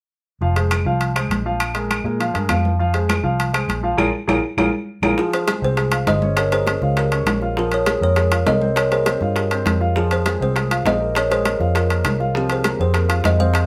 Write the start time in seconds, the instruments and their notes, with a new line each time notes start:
0.41 fingered electric bass F1, grand piano F3 F4 F5, high conga
0.56 grand piano G#3 G#4 C5, high conga, high timbale
0.71 high conga, high timbale, claves
0.85 fingered electric bass C2, grand piano F3 F4 F5
1.01 high conga, high timbale
1.16 grand piano G#3 G#4 C5, high conga, high timbale, claves
1.30 fingered electric bass A#1, high conga, high timbale
1.46 grand piano F3 F4 F5
1.60 high conga, high timbale, claves
1.75 grand piano G#3 G#4 A#4, high conga, high timbale
1.91 high conga, high timbale, claves
2.04 fingered electric bass A#2, grand piano G#3 G#4 A#4, high conga
2.20 grand piano F3 F4 F5, high conga, high timbale
2.34 fingered electric bass G2, grand piano G#3 G#4 A#4, high conga, high timbale
2.49 fingered electric bass F2, grand piano F3 F4 F5, high conga, high timbale, low timbale, claves
2.65 high conga
2.79 grand piano F3 F4 F5, high conga
2.94 grand piano G#3 G#4 C5, high conga, high timbale
3.09 high conga, high timbale, claves
3.23 fingered electric bass C2, grand piano F3 F4 F5
3.40 high conga, high timbale
3.53 grand piano G#3 G#4 C5, high conga, high timbale, claves
3.68 fingered electric bass A#1, high conga, high timbale
3.83 grand piano F3 F4 F5
3.97 fingered electric bass A#1, grand piano F4 G#4 A#4, high conga, high timbale, claves
4.27 fingered electric bass A#1, grand piano F4 G#4 A#4, high conga, high timbale, claves
4.57 fingered electric bass A#1, grand piano F4 G#4 A#4, high conga, high timbale, claves
5.02 fingered electric bass A#1, grand piano F4 G#4 A#4, high conga, high timbale, claves
5.18 grand piano F3 F4, kalimba F4 G#4, high bongo, high conga
5.33 kalimba G#4 C5, high conga, high timbale
5.47 grand piano G#3 G#4, high bongo, high conga, high timbale
5.62 fingered electric bass C2, grand piano C4 C5, kalimba G#4 C5
5.77 grand piano G#3 G#4, high bongo, high conga, high timbale
5.92 grand piano F4 F5, high conga, high timbale
6.07 fingered electric bass G1, kalimba C5 D#5, high bongo, low bongo, high conga, high timbale
6.22 grand piano C#4 C#5, high conga
6.37 kalimba A#4 C#5, high bongo, high conga, high timbale
6.52 grand piano A#3 A#4, kalimba G#4 C5, high bongo, high conga, high timbale
6.67 grand piano C#4 C#5, high bongo, high conga, high timbale
6.82 fingered electric bass C#2, grand piano F4 F5, high bongo, high conga
6.96 kalimba G4 A#4, high bongo, high conga, high timbale
7.12 grand piano C#4 C#5, high conga, high timbale
7.26 fingered electric bass A#1, high bongo, low bongo, high conga, high timbale
7.42 grand piano F4 F5, high bongo
7.57 grand piano F3 F4, kalimba F4 A#4, high bongo, high conga
7.71 kalimba A#4 C#5, high conga, high timbale
7.86 grand piano G#3 G#4, high bongo, high conga, high timbale
8.01 fingered electric bass F2, grand piano A#3 A#4, kalimba A#4 C#5
8.16 grand piano G#3 G#4, high bongo, high conga, high timbale
8.32 grand piano F4 F5, high conga, high timbale
8.46 fingered electric bass C2, kalimba A#4 D#5, high bongo, low bongo, high conga, high timbale, low timbale
8.61 grand piano C4 C5, high conga
8.76 kalimba A#4 C#5, high bongo, high conga, high timbale
8.91 grand piano A#3 A#4, kalimba G#4 C5, high bongo, high conga, high timbale
9.06 grand piano C4 C5, high bongo, high conga, high timbale
9.21 fingered electric bass G2, grand piano F4 F5, high bongo, high conga
9.36 kalimba G4 A#4, high bongo, high conga, high timbale
9.51 grand piano C4 C5, high conga, high timbale
9.66 fingered electric bass F2, high bongo, low bongo, high conga, high timbale
9.81 grand piano F4 F5, high bongo
9.96 grand piano F3 F4, kalimba F4 G#4, high bongo, high conga
10.11 kalimba G#4 C5, high conga, high timbale
10.26 grand piano G#3 G#4, high bongo, high conga, high timbale
10.41 fingered electric bass C2, grand piano C4 C5, kalimba G#4 C5
10.56 grand piano G#3 G#4, high bongo, high conga, high timbale
10.71 grand piano F4 F5, high conga, high timbale
10.85 fingered electric bass A#1, kalimba C5 D#5, high bongo, low bongo, high conga, high timbale, low timbale
11.00 grand piano A#3 A#4
11.15 kalimba A#4 C#5, high bongo, high conga, high timbale
11.30 grand piano G#3 G#4, kalimba G#4 C5, high bongo, high conga, high timbale
11.45 grand piano A#3 A#4, high bongo, high conga, high timbale
11.60 fingered electric bass F2, grand piano F4 F5, high bongo, high conga
11.75 kalimba F4 A#4, high bongo, high conga, high timbale
11.90 grand piano A#3 A#4, high conga, high timbale
12.04 fingered electric bass C2, high bongo, low bongo, high conga, high timbale
12.20 grand piano F4 F5, high bongo
12.34 grand piano F3 F4, kalimba C4 G4, high bongo, high conga
12.49 kalimba G#4 C5, high conga, high timbale
12.64 grand piano A#3 A#4, high bongo, high conga, high timbale
12.79 fingered electric bass F2, grand piano C4 C5, kalimba G#4 C5
12.94 grand piano A#3 A#4, high bongo, high conga, high timbale
13.09 grand piano F4 F5, high conga, high timbale
13.24 fingered electric bass F2, kalimba C5 D#5, high bongo, low bongo, high conga, high timbale
13.39 grand piano C4 C5, kalimba C5 F5, high conga
13.54 high bongo, high conga, high timbale